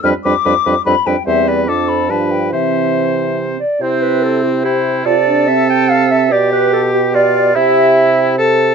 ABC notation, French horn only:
X:1
M:3/4
L:1/8
Q:1/4=145
K:C
V:1 name="French horn" clef=bass
G, G, G, G, G, G, | G,2 F,2 F,2 | E,4- E, z | E4 G2 |
F D C4 | G6 | G4 A2 |]